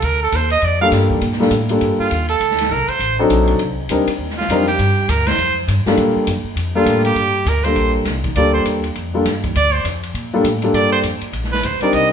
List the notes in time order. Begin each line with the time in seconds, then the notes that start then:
0.02 D2 A#4, ride
0.23 A4
0.32 D#2 C5, hi-hat pedal, ride
0.50 D#5, ride
0.62 F2 D5, ride
0.81 G3 A#3 D4 F4 A4 F5
0.91 G2, snare, hi-hat pedal, ride
1.10 kick
1.21 A#2, ride
1.32 snare
1.40 G3 A#3 D4 F4 A4, snare
1.51 A2, hi-hat pedal, ride
1.69 G3 A#3 D4 F4 A4, ride
1.81 G2, ride
1.99 F4, muted upright bass stroke
2.11 D#2, hi-hat pedal, ride
2.28 A4, ride
2.40 D2, ride
2.51 snare
2.58 snare, ride
2.70 C2 A#4, hi-hat pedal
2.88 C5, muted upright bass stroke, ride
2.99 A1, ride
3.19 F#3 C4 D4 D#4 A4
3.30 A#1, hi-hat pedal, ride
3.47 ride
3.59 C2, ride
3.89 D2 G3 C4 D4 D#4 A#4, hi-hat pedal, ride
4.07 muted upright bass stroke, ride
4.18 D#2
4.30 snare
4.38 F4, snare
4.49 F2 G3 C4 D4 D#4 A#4, hi-hat pedal, ride
4.67 G4, ride
4.79 G2, ride
5.08 D2 A#4, hi-hat pedal, ride
5.26 C5, snare, ride
5.38 F2, ride
5.68 G2, hi-hat pedal, ride
5.86 G3 A#3 D4 F4 A4, muted upright bass stroke, snare
5.97 A#2, ride
6.16 muted upright bass stroke
6.27 F#2, hi-hat pedal, ride
6.44 muted upright bass stroke
6.56 F2, ride
6.75 G3 A#3 D4 F4 A4
6.85 A2, hi-hat pedal, ride
7.05 G4, ride
7.15 G2, ride
7.45 D2 A#4, hi-hat pedal, ride
7.64 G3 A#3 D4 F4 A4 C5, ride
7.75 A#1, ride
8.05 C2, snare, hi-hat pedal, ride
8.24 kick, ride
8.36 D2 G3 A#3 D4 F4 A4 D5, ride
8.54 C5
8.65 D#2, hi-hat pedal, ride
8.84 ride
8.95 F2, ride
9.14 G3 A#3 D4 F4 A4
9.25 G2, snare, hi-hat pedal, ride
9.44 kick, ride
9.55 D2 D5, ride
9.73 C5
9.85 F2, hi-hat pedal, ride
10.03 ride
10.14 A#2, ride
10.33 G3 A#3 D4 F4 A4
10.44 A2, hi-hat pedal, ride
10.62 G3 A#3 D4 F4 A4, ride
10.73 G2 D5, ride
10.93 C5
11.03 F2, hi-hat pedal, ride
11.21 muted upright bass stroke, ride
11.33 A#1, ride
11.44 snare
11.52 B4, snare
11.63 D2 C5, hi-hat pedal, ride
11.81 G3 C4 D4 D#4 A#4 D5, muted upright bass stroke, ride
11.92 C2 D#5, ride